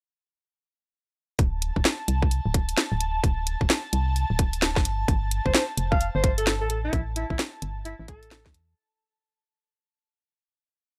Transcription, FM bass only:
1.39 1.71 D1 loud
1.76 1.83 D1 medium
2.08 2.41 C2 medium
2.46 2.74 D1 medium
2.92 3.21 D1 medium
3.24 3.56 D1 loud
3.61 3.68 D1 medium
3.93 4.25 C2 medium
4.30 4.78 D1 medium
4.76 5.05 G1 loud
5.08 5.41 G1 loud
5.46 5.53 G1 medium
5.78 6.10 F1 medium
6.15 6.63 G1 medium
6.61 6.90 A1 medium
6.93 7.25 A1 loud
7.30 7.37 A1 medium
7.62 7.94 G1 medium
8.00 8.47 A1 medium
8.46 8.74 E2 medium

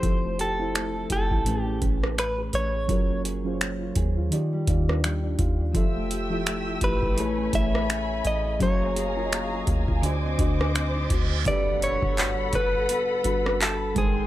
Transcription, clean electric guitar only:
0.00 0.40 C5 loud
0.41 1.07 A4 medium
1.12 1.61 A4 medium
1.61 1.79 G4 medium
2.19 2.41 B4 medium
2.55 3.22 C#5 loud
6.84 7.55 B4 loud
7.55 8.27 E5 loud
8.27 8.62 D#5 loud
8.63 9.65 C#5 medium
11.48 11.80 D5 loud
11.84 12.56 C#5 loud
12.55 13.62 B4 loud
13.62 13.98 A4 medium
13.98 14.27 G#4 medium

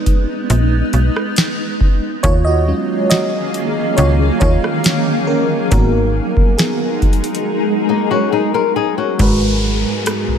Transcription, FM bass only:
0.50 0.83 A#1 loud
0.94 1.10 B1 medium
2.24 2.73 D#2 loud
3.98 4.31 C#2 loud
4.41 4.58 D#2 loud
5.72 6.21 G#1 loud
9.20 9.85 G#1 loud
10.28 10.37 B1 soft

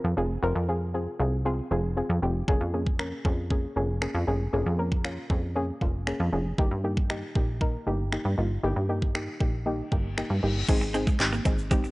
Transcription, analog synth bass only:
0.04 0.15 F2 medium
0.17 0.38 F1 loud
0.43 0.53 F1 loud
0.56 1.08 F2 medium
1.20 1.61 C2 medium
1.71 2.02 F1 loud
2.09 2.20 F2 loud
2.22 2.43 F1 loud
2.48 2.59 F1 loud
2.61 3.13 F2 medium
3.25 3.67 F2 medium
3.76 4.08 F1 loud
4.15 4.25 F2 loud
4.28 4.48 F1 loud
4.53 4.64 F1 loud
4.66 5.18 F2 medium
5.30 5.72 F2 medium
5.81 6.13 F1 loud
6.20 6.30 F2 loud
6.33 6.53 F1 loud
6.58 6.69 G1 loud
6.71 7.23 G2 medium
7.35 7.77 A#1 medium
7.87 8.18 G1 loud
8.25 8.35 G2 medium
8.38 8.59 G1 loud
8.63 8.74 G1 loud
8.76 9.28 G2 medium
9.40 9.82 A#1 medium
9.92 10.23 G1 loud
10.30 10.40 G2 loud
10.43 10.64 G1 loud
10.69 11.10 G#1 loud
11.20 11.41 G#1 medium
11.46 11.87 G#1 loud

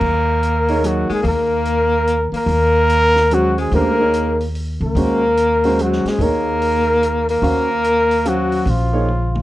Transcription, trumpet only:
0.00 0.88 A#4 medium
0.87 1.11 F#4 medium
1.14 1.25 G#4 medium
1.28 2.31 A#4 medium
2.37 3.35 A#4 loud
3.34 3.59 F#4 medium
3.60 3.73 G#4 medium
3.75 4.47 A#4 loud
4.83 5.84 A#4 loud
5.82 6.11 F#4 medium
6.09 6.24 G#4 medium
6.23 7.29 A#4 loud
7.30 8.29 A#4 loud
8.28 8.71 F#4 medium
8.70 9.42 F4 medium

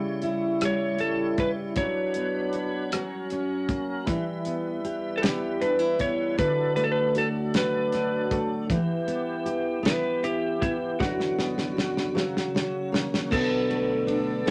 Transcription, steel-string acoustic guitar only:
0.00 1.76 C#3 medium
0.00 0.61 G3 medium
0.23 1.84 E4 medium
0.62 1.37 G3 medium
1.00 1.84 C#4 medium
1.38 1.84 G3 medium
1.76 2.92 F#3 medium
2.16 3.00 B3 medium
2.54 3.00 F#4 medium
2.93 4.07 F#3 medium
3.32 4.16 C#4 medium
3.70 4.16 A#3 soft
4.07 6.38 E3 medium
4.46 5.22 B3 soft
4.84 6.46 G4 medium
5.23 5.97 B3 medium
5.62 5.79 D4 medium
5.79 6.45 E4 soft
5.99 6.46 B3 medium
6.38 8.69 D3 medium
6.76 8.30 A3 medium
7.15 8.77 F#4 medium
7.54 8.69 F#3 medium
7.94 8.78 D4 medium
8.31 8.77 A3 medium
8.70 10.99 E3 medium
9.07 9.82 B3 medium
9.46 11.08 G4 medium
9.83 10.60 B3 medium
10.23 11.08 E4 medium
10.62 11.08 B3 soft
10.99 12.14 F#3 medium
11.38 12.23 B3 medium
11.77 14.50 F#4 medium
12.15 14.50 F#3 medium
12.55 13.39 C#4 medium
12.92 13.39 A#3 medium
13.31 14.50 B2 medium
13.70 14.45 A3 medium
14.07 14.50 D4 medium
14.46 14.50 A3 medium

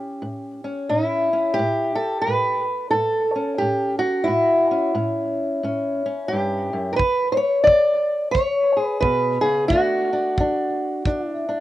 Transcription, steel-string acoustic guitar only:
0.00 0.18 A2 medium
0.00 0.64 C#4 soft
0.00 1.53 G4 medium
0.22 0.85 A2 medium
0.64 1.33 C#4 soft
0.89 1.53 A2 medium
0.89 1.95 E4 medium
1.33 1.57 C#4 soft
1.54 2.65 G4 medium
1.59 2.21 A2 medium
1.95 2.21 A4 medium
2.22 2.90 B4 medium
2.27 2.89 A2 medium
2.91 3.56 A2 medium
2.91 4.23 A4 medium
3.35 4.26 C#4 soft
3.58 4.24 A2 medium
3.58 3.98 G4 medium
3.99 4.95 F#4 medium
4.24 4.91 A2 medium
4.24 6.92 E4 medium
4.71 4.94 C#4 soft
4.95 5.58 A2 medium
4.95 5.63 C#4 soft
5.63 6.26 A2 medium
5.63 6.05 C#4 soft
6.06 6.97 C#4 soft
6.28 6.98 G4 medium
6.32 6.73 G2 medium
6.73 6.99 F#2 medium
6.93 6.96 A#4 medium
6.93 7.30 B4 medium
6.99 7.62 E2 medium
7.32 7.37 C5 medium
7.37 7.63 C#5 medium
7.64 8.30 E2 medium
7.64 8.31 D5 loud
8.31 8.97 E2 medium
8.31 8.83 C#5 loud
8.77 9.40 G#4 soft
8.83 9.00 B4 loud
9.01 9.42 B2 medium
9.01 9.70 B4 medium
9.41 9.70 C#3 medium
9.41 9.68 G#4 medium
9.68 10.33 D3 medium
9.68 11.60 A3 soft
9.68 11.28 F#4 loud
9.73 10.12 D4 soft
10.13 10.39 D4 soft
10.39 11.02 D3 medium
10.39 11.05 D4 soft
11.06 11.60 D3 medium
11.06 11.48 D4 soft
11.28 11.60 E4 loud
11.49 11.60 D4 soft

